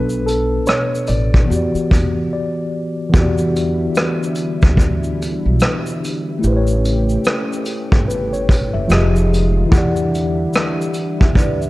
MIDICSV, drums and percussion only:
0, 0, Header, 1, 2, 480
1, 0, Start_track
1, 0, Tempo, 821918
1, 1833, Time_signature, 4, 2, 24, 8
1, 6831, End_track
2, 0, Start_track
2, 0, Title_t, "Drums"
2, 55, Note_on_c, 9, 82, 53
2, 113, Note_off_c, 9, 82, 0
2, 162, Note_on_c, 9, 42, 63
2, 162, Note_on_c, 9, 82, 43
2, 221, Note_off_c, 9, 42, 0
2, 221, Note_off_c, 9, 82, 0
2, 389, Note_on_c, 9, 82, 62
2, 402, Note_on_c, 9, 37, 108
2, 447, Note_off_c, 9, 82, 0
2, 460, Note_off_c, 9, 37, 0
2, 555, Note_on_c, 9, 82, 60
2, 613, Note_off_c, 9, 82, 0
2, 625, Note_on_c, 9, 42, 59
2, 625, Note_on_c, 9, 82, 44
2, 683, Note_off_c, 9, 42, 0
2, 683, Note_off_c, 9, 82, 0
2, 783, Note_on_c, 9, 36, 85
2, 841, Note_off_c, 9, 36, 0
2, 886, Note_on_c, 9, 82, 72
2, 944, Note_off_c, 9, 82, 0
2, 1023, Note_on_c, 9, 82, 46
2, 1082, Note_off_c, 9, 82, 0
2, 1117, Note_on_c, 9, 36, 89
2, 1133, Note_on_c, 9, 42, 68
2, 1133, Note_on_c, 9, 82, 48
2, 1175, Note_off_c, 9, 36, 0
2, 1191, Note_off_c, 9, 42, 0
2, 1191, Note_off_c, 9, 82, 0
2, 1832, Note_on_c, 9, 36, 109
2, 1838, Note_on_c, 9, 82, 68
2, 1890, Note_off_c, 9, 36, 0
2, 1896, Note_off_c, 9, 82, 0
2, 1973, Note_on_c, 9, 82, 55
2, 2031, Note_off_c, 9, 82, 0
2, 2080, Note_on_c, 9, 42, 60
2, 2080, Note_on_c, 9, 82, 46
2, 2139, Note_off_c, 9, 42, 0
2, 2139, Note_off_c, 9, 82, 0
2, 2307, Note_on_c, 9, 82, 63
2, 2320, Note_on_c, 9, 37, 105
2, 2366, Note_off_c, 9, 82, 0
2, 2378, Note_off_c, 9, 37, 0
2, 2471, Note_on_c, 9, 82, 59
2, 2530, Note_off_c, 9, 82, 0
2, 2541, Note_on_c, 9, 42, 62
2, 2541, Note_on_c, 9, 82, 46
2, 2600, Note_off_c, 9, 42, 0
2, 2600, Note_off_c, 9, 82, 0
2, 2698, Note_on_c, 9, 82, 39
2, 2702, Note_on_c, 9, 36, 93
2, 2756, Note_off_c, 9, 82, 0
2, 2760, Note_off_c, 9, 36, 0
2, 2787, Note_on_c, 9, 36, 85
2, 2805, Note_on_c, 9, 82, 71
2, 2846, Note_off_c, 9, 36, 0
2, 2863, Note_off_c, 9, 82, 0
2, 2940, Note_on_c, 9, 82, 48
2, 2999, Note_off_c, 9, 82, 0
2, 3049, Note_on_c, 9, 42, 72
2, 3049, Note_on_c, 9, 82, 50
2, 3107, Note_off_c, 9, 42, 0
2, 3107, Note_off_c, 9, 82, 0
2, 3270, Note_on_c, 9, 82, 78
2, 3281, Note_on_c, 9, 37, 113
2, 3329, Note_off_c, 9, 82, 0
2, 3340, Note_off_c, 9, 37, 0
2, 3424, Note_on_c, 9, 82, 56
2, 3482, Note_off_c, 9, 82, 0
2, 3529, Note_on_c, 9, 42, 68
2, 3529, Note_on_c, 9, 82, 51
2, 3587, Note_off_c, 9, 42, 0
2, 3587, Note_off_c, 9, 82, 0
2, 3758, Note_on_c, 9, 82, 70
2, 3817, Note_off_c, 9, 82, 0
2, 3895, Note_on_c, 9, 82, 57
2, 3954, Note_off_c, 9, 82, 0
2, 4001, Note_on_c, 9, 42, 59
2, 4001, Note_on_c, 9, 82, 46
2, 4059, Note_off_c, 9, 42, 0
2, 4059, Note_off_c, 9, 82, 0
2, 4142, Note_on_c, 9, 82, 41
2, 4201, Note_off_c, 9, 82, 0
2, 4232, Note_on_c, 9, 82, 62
2, 4244, Note_on_c, 9, 37, 108
2, 4290, Note_off_c, 9, 82, 0
2, 4303, Note_off_c, 9, 37, 0
2, 4395, Note_on_c, 9, 82, 57
2, 4454, Note_off_c, 9, 82, 0
2, 4469, Note_on_c, 9, 42, 61
2, 4469, Note_on_c, 9, 82, 44
2, 4528, Note_off_c, 9, 42, 0
2, 4528, Note_off_c, 9, 82, 0
2, 4625, Note_on_c, 9, 36, 94
2, 4684, Note_off_c, 9, 36, 0
2, 4733, Note_on_c, 9, 82, 72
2, 4791, Note_off_c, 9, 82, 0
2, 4868, Note_on_c, 9, 82, 49
2, 4927, Note_off_c, 9, 82, 0
2, 4958, Note_on_c, 9, 36, 89
2, 4974, Note_on_c, 9, 42, 71
2, 4974, Note_on_c, 9, 82, 53
2, 5016, Note_off_c, 9, 36, 0
2, 5033, Note_off_c, 9, 42, 0
2, 5033, Note_off_c, 9, 82, 0
2, 5196, Note_on_c, 9, 82, 80
2, 5207, Note_on_c, 9, 37, 119
2, 5254, Note_off_c, 9, 82, 0
2, 5265, Note_off_c, 9, 37, 0
2, 5349, Note_on_c, 9, 82, 57
2, 5407, Note_off_c, 9, 82, 0
2, 5453, Note_on_c, 9, 42, 70
2, 5453, Note_on_c, 9, 82, 49
2, 5511, Note_off_c, 9, 42, 0
2, 5511, Note_off_c, 9, 82, 0
2, 5675, Note_on_c, 9, 36, 109
2, 5682, Note_on_c, 9, 82, 67
2, 5734, Note_off_c, 9, 36, 0
2, 5740, Note_off_c, 9, 82, 0
2, 5818, Note_on_c, 9, 82, 53
2, 5877, Note_off_c, 9, 82, 0
2, 5925, Note_on_c, 9, 42, 62
2, 5925, Note_on_c, 9, 82, 45
2, 5983, Note_off_c, 9, 42, 0
2, 5983, Note_off_c, 9, 82, 0
2, 6152, Note_on_c, 9, 82, 61
2, 6164, Note_on_c, 9, 37, 106
2, 6210, Note_off_c, 9, 82, 0
2, 6223, Note_off_c, 9, 37, 0
2, 6316, Note_on_c, 9, 82, 61
2, 6374, Note_off_c, 9, 82, 0
2, 6388, Note_on_c, 9, 42, 62
2, 6388, Note_on_c, 9, 82, 45
2, 6446, Note_off_c, 9, 42, 0
2, 6446, Note_off_c, 9, 82, 0
2, 6546, Note_on_c, 9, 36, 88
2, 6604, Note_off_c, 9, 36, 0
2, 6631, Note_on_c, 9, 36, 86
2, 6649, Note_on_c, 9, 82, 72
2, 6689, Note_off_c, 9, 36, 0
2, 6707, Note_off_c, 9, 82, 0
2, 6785, Note_on_c, 9, 82, 48
2, 6831, Note_off_c, 9, 82, 0
2, 6831, End_track
0, 0, End_of_file